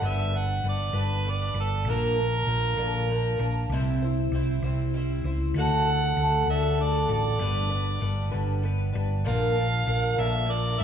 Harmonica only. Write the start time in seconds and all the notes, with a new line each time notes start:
0.07 E5
0.37 F#5
0.69 D5
0.99 B4
1.30 D5
1.60 A4
1.90 A#4
5.59 F#5
6.50 E5
6.82 D5
7.13 D5
9.28 F5
10.21 E5
10.51 D5
10.80 E5